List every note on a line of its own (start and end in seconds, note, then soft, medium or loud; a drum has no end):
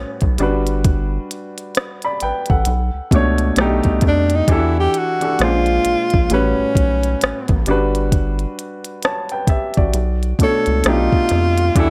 0.00 0.26 A2 medium
0.00 0.27 G3 medium
0.00 0.28 C#4 medium
0.00 0.41 C#4 medium
0.00 0.28 F#4 medium
0.00 0.28 B4 medium
0.21 0.38 B1 medium
0.21 kick medium
0.21 closed hi-hat soft
0.38 1.18 G1 loud
0.38 2.04 G3 medium
0.38 2.05 D4 medium
0.38 2.06 F#4 medium
0.38 cross-stick soft
0.38 closed hi-hat medium
0.42 1.77 B4 medium
0.67 closed hi-hat soft
0.85 kick loud
0.85 closed hi-hat medium
1.31 closed hi-hat medium
1.58 closed hi-hat soft
1.75 cross-stick medium
1.75 closed hi-hat medium
2.02 2.22 D5 soft
2.02 2.21 B5 medium
2.02 closed hi-hat soft
2.20 2.33 A1 soft
2.20 2.48 B4 medium
2.20 2.48 G5 medium
2.20 closed hi-hat medium
2.46 2.92 F#5 medium
2.46 closed hi-hat soft
2.50 2.65 A1 medium
2.50 2.93 A4 soft
2.50 kick medium
2.65 2.90 B1 loud
2.65 closed hi-hat medium
2.94 3.01 C#2 soft
3.11 3.51 C#2 medium
3.11 3.55 B2 medium
3.11 3.56 A3 medium
3.11 3.57 D4 medium
3.11 kick medium
3.11 closed hi-hat medium
3.15 3.59 C#5 medium
3.38 closed hi-hat soft
3.56 3.81 B1 loud
3.56 4.40 B2 medium
3.56 4.40 A3 medium
3.56 4.41 D4 medium
3.56 4.42 D#4 medium
3.56 cross-stick loud
3.56 closed hi-hat medium
3.61 4.42 G4 medium
3.84 4.01 C2 medium
3.84 kick medium
3.84 closed hi-hat soft
4.01 4.42 F2 medium
4.01 kick medium
4.01 cross-stick soft
4.01 closed hi-hat medium
4.08 4.36 D4 medium
4.30 closed hi-hat soft
4.35 4.55 D#4 medium
4.48 4.88 E2 medium
4.48 5.12 E3 medium
4.48 5.12 D4 medium
4.48 5.13 F#4 medium
4.48 5.13 G4 medium
4.48 kick loud
4.48 closed hi-hat medium
4.52 4.78 E4 medium
4.52 5.14 A4 medium
4.80 5.00 G4 medium
4.94 closed hi-hat medium
4.98 5.44 F#4 medium
5.20 5.39 E3 medium
5.20 5.40 D4 medium
5.20 5.40 F#4 medium
5.20 5.41 G4 soft
5.20 5.41 A4 medium
5.20 closed hi-hat soft
5.39 5.79 A#1 medium
5.39 6.22 A#2 medium
5.39 6.23 G#3 medium
5.39 5.48 C#4 soft
5.39 6.32 F4 medium
5.39 cross-stick medium
5.39 closed hi-hat medium
5.43 6.24 C5 medium
5.48 6.26 D4 medium
5.66 closed hi-hat soft
5.85 5.96 A#1 soft
5.85 closed hi-hat medium
6.10 6.29 A#1 medium
6.10 kick medium
6.10 closed hi-hat soft
6.30 6.54 A1 loud
6.30 7.54 A2 medium
6.30 7.55 G3 medium
6.30 7.55 C#4 medium
6.30 7.65 C#4 medium
6.30 7.56 F#4 medium
6.30 7.56 B4 medium
6.30 closed hi-hat medium
6.59 6.66 B1 soft
6.75 7.16 B1 medium
6.75 kick medium
6.75 closed hi-hat medium
7.03 closed hi-hat soft
7.21 7.34 A1 soft
7.21 cross-stick medium
7.21 closed hi-hat medium
7.48 7.65 A1 loud
7.48 kick medium
7.48 closed hi-hat soft
7.66 8.46 G1 loud
7.66 9.32 G3 medium
7.66 9.33 D4 medium
7.66 9.04 F#4 medium
7.66 cross-stick soft
7.66 closed hi-hat medium
7.70 9.05 B4 medium
7.95 closed hi-hat soft
8.12 kick loud
8.12 closed hi-hat medium
8.39 closed hi-hat soft
8.59 closed hi-hat medium
8.85 closed hi-hat soft
9.03 9.30 C#5 soft
9.03 9.30 A5 medium
9.03 cross-stick medium
9.03 closed hi-hat medium
9.29 9.49 B4 soft
9.29 9.48 G5 medium
9.29 closed hi-hat soft
9.47 9.59 A1 soft
9.47 9.75 G4 soft
9.47 9.75 E5 medium
9.47 kick medium
9.47 cross-stick soft
9.47 closed hi-hat medium
9.74 10.20 F#4 soft
9.74 10.20 D5 medium
9.74 kick medium
9.74 closed hi-hat soft
9.78 9.93 A1 medium
9.94 10.34 B1 medium
9.94 closed hi-hat medium
10.23 closed hi-hat soft
10.39 10.50 C#2 soft
10.39 10.82 B2 medium
10.39 10.84 A3 medium
10.39 10.85 D4 medium
10.39 kick medium
10.39 closed hi-hat medium
10.43 10.90 A4 medium
10.43 10.87 C#5 medium
10.66 10.83 C#2 medium
10.66 closed hi-hat soft
10.84 11.09 B1 loud
10.84 11.67 B2 medium
10.84 11.68 A3 medium
10.84 11.68 D4 medium
10.84 11.69 D#4 medium
10.84 cross-stick loud
10.84 closed hi-hat medium
10.88 11.81 F4 medium
10.88 11.69 G4 medium
11.12 kick medium
11.29 11.71 F2 medium
11.29 cross-stick soft
11.29 closed hi-hat medium
11.58 closed hi-hat soft
11.75 11.90 E2 medium
11.75 11.90 E3 medium
11.75 11.90 D4 medium
11.75 11.90 F#4 medium
11.75 11.90 G4 medium
11.75 11.90 A4 medium
11.75 kick loud
11.75 closed hi-hat medium
11.80 11.90 E4 medium